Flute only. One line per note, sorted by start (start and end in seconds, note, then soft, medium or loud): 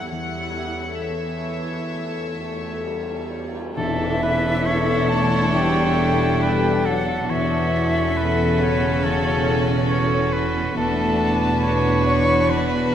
3.77 5.11 E5 loud
5.09 5.53 A5 medium
5.54 6.87 G5 loud
6.86 7.29 F#5 medium
7.29 8.63 E5 loud
8.62 10.34 C#5 medium
10.76 12.02 A5 loud
12.08 12.52 C#6 medium
12.51 12.95 B5 medium